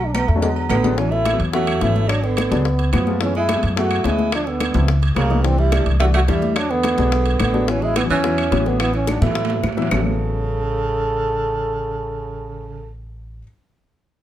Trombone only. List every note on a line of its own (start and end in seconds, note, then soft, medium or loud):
0.06 0.16 D4 medium
0.14 0.30 B3 medium
0.28 0.42 A3 medium
0.42 0.50 G#3 medium
0.69 0.99 B3 medium
0.98 1.14 C#4 medium
1.12 1.40 E4 loud
1.54 1.83 F#4 loud
1.82 2.11 E4 medium
2.10 2.26 D4 medium
2.25 2.93 B3 medium
2.93 3.19 B3 medium
3.23 3.35 C#4 medium
3.37 3.62 E4 loud
3.78 4.08 F#4 medium
4.07 4.34 E4 medium
4.35 4.50 D4 medium
4.49 4.90 B3 medium
5.16 5.46 A#3 medium
5.44 5.61 C4 medium
5.59 5.87 E4 medium
6.01 6.07 F#4 medium
6.16 6.22 F#4 medium
6.29 6.58 E4 medium
6.57 6.72 D4 loud
6.71 7.40 B3 loud
7.42 7.71 B3 medium
7.70 7.86 C#4 medium
7.84 7.96 E4 loud
7.97 8.03 B3 medium
8.11 8.69 C#4 loud
8.68 8.80 B3 medium
8.81 8.93 B3 medium
8.96 9.11 C#4 medium
9.09 9.22 D4 medium
9.23 9.74 E4 medium
9.93 12.91 A4 medium